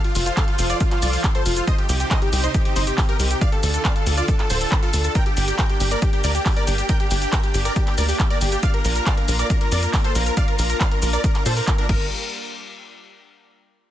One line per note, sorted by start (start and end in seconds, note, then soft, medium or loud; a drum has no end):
0.00 1.66 F3 medium
0.00 1.66 F4 medium
0.00 1.66 A4 medium
0.00 1.66 C5 medium
0.04 0.12 F4 medium
0.04 closed hi-hat soft
0.15 0.31 F1 loud
0.15 0.23 F4 medium
0.15 open hi-hat loud
0.15 shaker medium
0.26 0.34 F4 medium
0.26 closed hi-hat soft
0.26 shaker soft
0.37 0.45 A4 medium
0.37 0.45 F5 loud
0.37 kick loud
0.37 clap loud
0.37 closed hi-hat medium
0.37 shaker soft
0.48 0.56 F4 medium
0.48 closed hi-hat soft
0.59 0.74 F1 loud
0.59 0.66 F4 medium
0.59 0.67 F4 medium
0.59 open hi-hat loud
0.59 shaker medium
0.70 0.77 F4 medium
0.70 0.77 D5 medium
0.70 closed hi-hat soft
0.70 shaker soft
0.81 0.88 F4 medium
0.81 kick loud
0.81 closed hi-hat medium
0.81 shaker soft
0.91 0.99 F4 medium
0.91 clap soft
0.91 closed hi-hat soft
1.02 1.17 C2 medium
1.02 1.10 F4 medium
1.02 1.10 D5 medium
1.02 1.10 D5 loud
1.02 open hi-hat loud
1.02 shaker medium
1.13 1.21 F4 medium
1.13 open hi-hat medium
1.13 shaker soft
1.24 1.32 F4 medium
1.24 kick loud
1.24 clap loud
1.24 closed hi-hat medium
1.24 shaker soft
1.35 1.43 A4 medium
1.35 1.43 C5 loud
1.35 1.43 C5 medium
1.35 closed hi-hat soft
1.46 1.61 F1 medium
1.46 1.53 F4 medium
1.46 1.54 F4 medium
1.46 open hi-hat loud
1.46 shaker medium
1.57 1.64 F4 medium
1.57 closed hi-hat soft
1.57 shaker soft
1.67 3.40 C3 medium
1.67 3.40 C4 medium
1.67 3.40 D#4 medium
1.67 3.40 G4 medium
1.67 1.75 C5 medium
1.67 1.75 D#5 loud
1.67 kick loud
1.67 closed hi-hat medium
1.67 shaker soft
1.78 1.86 G4 medium
1.78 closed hi-hat soft
1.89 2.04 C2 loud
1.89 1.97 G4 medium
1.89 open hi-hat loud
1.89 shaker medium
2.00 2.08 G4 medium
2.00 closed hi-hat soft
2.00 shaker soft
2.11 2.19 C5 medium
2.11 2.19 D#5 loud
2.11 kick loud
2.11 clap loud
2.11 closed hi-hat medium
2.11 shaker soft
2.22 2.29 G4 medium
2.22 2.30 G4 medium
2.22 closed hi-hat soft
2.33 2.48 C2 loud
2.33 2.40 G4 medium
2.33 open hi-hat loud
2.33 shaker medium
2.44 2.51 D#4 medium
2.44 2.51 C5 medium
2.44 closed hi-hat soft
2.44 shaker soft
2.54 2.62 G4 medium
2.54 kick loud
2.54 closed hi-hat medium
2.54 shaker soft
2.65 2.73 G4 medium
2.65 closed hi-hat soft
2.76 2.91 G1 medium
2.76 2.84 D#4 medium
2.76 2.84 C5 loud
2.76 2.84 C5 medium
2.76 open hi-hat loud
2.76 shaker medium
2.87 2.95 G4 medium
2.87 closed hi-hat soft
2.87 shaker soft
2.98 3.05 G4 medium
2.98 3.06 G4 medium
2.98 kick loud
2.98 clap loud
2.98 open hi-hat medium
2.98 shaker soft
3.09 3.16 G4 medium
3.09 3.16 A#4 loud
3.09 closed hi-hat soft
3.20 3.35 C2 loud
3.20 3.27 G4 medium
3.20 open hi-hat loud
3.20 shaker medium
3.31 3.38 G4 medium
3.31 closed hi-hat soft
3.31 shaker soft
3.41 5.14 D3 medium
3.41 11.85 D4 medium
3.41 5.14 F4 medium
3.41 5.14 A4 medium
3.41 3.49 D5 medium
3.41 3.49 F5 loud
3.41 kick loud
3.41 closed hi-hat medium
3.41 shaker soft
3.52 3.60 A4 medium
3.52 closed hi-hat soft
3.63 3.78 D2 loud
3.63 3.71 A4 medium
3.63 open hi-hat loud
3.63 shaker medium
3.74 3.82 A4 medium
3.74 closed hi-hat soft
3.74 shaker soft
3.85 3.92 D5 medium
3.85 3.92 F5 loud
3.85 kick loud
3.85 clap loud
3.85 closed hi-hat medium
3.85 shaker soft
3.96 4.03 A4 medium
3.96 closed hi-hat soft
4.07 4.22 D2 loud
4.07 4.14 A4 medium
4.07 open hi-hat loud
4.07 shaker medium
4.17 4.25 F4 medium
4.17 4.25 D5 loud
4.17 closed hi-hat soft
4.17 shaker soft
4.28 4.36 A4 medium
4.28 kick loud
4.28 closed hi-hat medium
4.28 shaker soft
4.39 4.47 A4 medium
4.39 clap soft
4.39 closed hi-hat soft
4.50 4.65 D1 medium
4.50 4.58 A4 medium
4.50 4.58 C5 medium
4.50 4.58 C5 loud
4.50 open hi-hat loud
4.50 shaker medium
4.61 4.69 A4 medium
4.61 open hi-hat medium
4.61 shaker soft
4.72 4.80 A4 medium
4.72 kick loud
4.72 clap loud
4.72 closed hi-hat medium
4.72 shaker soft
4.83 4.90 F4 medium
4.83 4.90 A4 loud
4.83 closed hi-hat soft
4.93 5.09 D2 medium
4.93 5.01 A4 medium
4.93 open hi-hat loud
4.93 shaker medium
5.04 5.12 A4 medium
5.04 closed hi-hat soft
5.04 shaker soft
5.15 11.85 A#3 medium
5.15 8.60 G4 medium
5.15 5.23 A#4 medium
5.15 5.23 G5 loud
5.15 5.23 G5 medium
5.15 kick loud
5.15 closed hi-hat medium
5.15 shaker soft
5.26 5.34 G4 medium
5.26 closed hi-hat soft
5.37 5.52 G1 loud
5.37 5.45 G4 medium
5.37 open hi-hat loud
5.37 shaker medium
5.48 5.56 G4 medium
5.48 closed hi-hat soft
5.48 shaker soft
5.59 5.66 A#4 medium
5.59 5.66 G5 loud
5.59 5.66 G5 medium
5.59 kick loud
5.59 clap loud
5.59 closed hi-hat medium
5.59 shaker soft
5.70 5.77 G4 medium
5.70 closed hi-hat soft
5.80 5.96 G1 loud
5.80 5.88 G4 medium
5.80 open hi-hat loud
5.80 shaker medium
5.91 5.99 A#4 medium
5.91 5.99 D5 medium
5.91 closed hi-hat soft
5.91 shaker soft
6.02 6.10 G4 medium
6.02 kick loud
6.02 closed hi-hat medium
6.02 shaker soft
6.13 6.21 G4 medium
6.13 closed hi-hat soft
6.24 6.39 D2 medium
6.24 6.32 A#4 medium
6.24 6.32 D5 medium
6.24 6.32 D5 loud
6.24 open hi-hat loud
6.24 shaker medium
6.35 6.42 G4 medium
6.35 6.43 G4 medium
6.35 closed hi-hat soft
6.35 shaker soft
6.46 6.53 G4 medium
6.46 kick loud
6.46 clap loud
6.46 open hi-hat medium
6.46 shaker soft
6.56 6.64 A#4 medium
6.56 6.64 D5 loud
6.56 closed hi-hat soft
6.67 6.83 G1 medium
6.67 6.75 G4 medium
6.67 open hi-hat loud
6.67 shaker medium
6.78 6.86 G4 medium
6.78 closed hi-hat soft
6.78 shaker soft
6.89 6.97 A#4 medium
6.89 6.97 G5 loud
6.89 kick loud
6.89 closed hi-hat medium
6.89 shaker soft
7.00 7.08 G4 medium
7.00 closed hi-hat soft
7.11 7.26 G1 loud
7.11 7.18 G4 medium
7.11 7.19 G4 medium
7.11 open hi-hat loud
7.11 shaker medium
7.22 7.29 G4 medium
7.22 7.30 G4 medium
7.22 closed hi-hat soft
7.22 shaker soft
7.33 7.40 A#4 medium
7.33 7.40 G5 loud
7.33 kick loud
7.33 clap loud
7.33 closed hi-hat medium
7.33 shaker soft
7.43 7.51 G4 medium
7.43 closed hi-hat soft
7.54 7.70 G1 loud
7.54 7.62 G4 medium
7.54 open hi-hat loud
7.54 shaker medium
7.65 7.73 A#4 medium
7.65 7.73 D5 medium
7.65 7.73 D5 loud
7.65 closed hi-hat soft
7.65 shaker soft
7.76 7.84 G4 medium
7.76 kick loud
7.76 closed hi-hat medium
7.76 shaker soft
7.87 7.94 G4 medium
7.87 7.95 G4 medium
7.87 clap soft
7.87 closed hi-hat soft
7.98 8.13 D2 medium
7.98 8.05 A#4 medium
7.98 8.05 D5 loud
7.98 8.06 D5 medium
7.98 open hi-hat loud
7.98 shaker medium
8.09 8.16 G4 medium
8.09 open hi-hat medium
8.09 shaker soft
8.20 8.27 G4 medium
8.20 kick loud
8.20 clap loud
8.20 closed hi-hat medium
8.20 shaker soft
8.30 8.38 A#4 medium
8.30 8.38 D5 loud
8.30 8.38 D5 medium
8.30 closed hi-hat soft
8.41 8.57 G1 medium
8.41 8.49 G4 medium
8.41 open hi-hat loud
8.41 shaker medium
8.52 8.60 G4 medium
8.52 closed hi-hat soft
8.52 shaker soft
8.63 11.86 F4 medium
8.63 8.71 D5 medium
8.63 8.71 F5 loud
8.63 kick loud
8.63 closed hi-hat medium
8.63 shaker soft
8.74 8.82 A#4 medium
8.74 closed hi-hat soft
8.85 9.00 A#1 loud
8.85 8.93 A#4 medium
8.85 open hi-hat loud
8.85 shaker medium
8.96 9.03 A#4 medium
8.96 closed hi-hat soft
8.96 shaker soft
9.06 9.14 D5 medium
9.06 9.14 F5 medium
9.06 kick loud
9.06 clap loud
9.06 closed hi-hat medium
9.06 shaker soft
9.17 9.25 A#4 medium
9.17 closed hi-hat soft
9.28 9.44 A#1 loud
9.28 9.36 A#4 medium
9.28 open hi-hat loud
9.28 shaker medium
9.39 9.47 A#4 medium
9.39 9.47 D5 medium
9.39 closed hi-hat soft
9.39 shaker soft
9.50 9.58 A#4 medium
9.50 kick loud
9.50 closed hi-hat medium
9.50 shaker soft
9.61 9.69 A#4 medium
9.61 closed hi-hat soft
9.72 9.87 F2 medium
9.72 9.79 A#4 medium
9.72 9.79 D5 medium
9.72 9.79 D5 loud
9.72 open hi-hat loud
9.72 shaker medium
9.83 9.90 A#4 medium
9.83 closed hi-hat soft
9.83 shaker soft
9.94 10.01 A#4 medium
9.94 kick loud
9.94 clap loud
9.94 open hi-hat medium
9.94 shaker soft
10.04 10.12 A4 medium
10.04 10.12 C5 medium
10.04 10.12 C5 loud
10.04 closed hi-hat soft
10.15 10.31 A#1 loud
10.15 10.23 A#4 medium
10.15 open hi-hat loud
10.15 shaker medium
10.26 10.34 A#4 medium
10.26 closed hi-hat soft
10.26 shaker soft
10.37 10.45 D5 medium
10.37 10.45 F5 loud
10.37 kick loud
10.37 closed hi-hat medium
10.37 shaker soft
10.48 10.56 A#4 medium
10.48 closed hi-hat soft
10.59 10.74 A#1 loud
10.59 10.66 A#4 medium
10.59 10.67 A#4 medium
10.59 open hi-hat loud
10.59 shaker medium
10.70 10.77 A#4 medium
10.70 closed hi-hat soft
10.70 shaker soft
10.81 10.88 D5 medium
10.81 10.88 F5 loud
10.81 kick loud
10.81 clap loud
10.81 closed hi-hat medium
10.81 shaker soft
10.91 10.99 A#4 medium
10.91 closed hi-hat soft
11.02 11.17 A#1 loud
11.02 11.10 A#4 medium
11.02 open hi-hat medium
11.02 shaker medium
11.13 11.21 A#4 medium
11.13 11.21 D5 medium
11.13 11.21 D5 loud
11.13 closed hi-hat soft
11.13 shaker soft
11.24 11.32 A#4 medium
11.24 kick loud
11.24 closed hi-hat medium
11.24 shaker soft
11.35 11.43 A#4 medium
11.35 clap soft
11.35 closed hi-hat soft
11.46 11.61 A#2 loud
11.46 11.53 A4 medium
11.46 11.53 C5 medium
11.46 open hi-hat loud
11.46 shaker medium
11.57 11.64 A#4 medium
11.57 open hi-hat medium
11.57 shaker soft
11.68 11.75 A#4 medium
11.68 kick loud
11.68 clap loud
11.68 closed hi-hat medium
11.68 shaker soft
11.78 11.86 D4 medium
11.78 11.86 A#4 medium
11.78 closed hi-hat soft
11.89 12.09 G1 loud
11.89 12.09 G3 medium
11.89 12.09 G4 medium
11.89 12.09 A#4 medium
11.89 12.06 A#4 loud
11.89 12.06 A#4 medium
11.89 12.09 D5 medium
11.89 kick loud
11.89 crash medium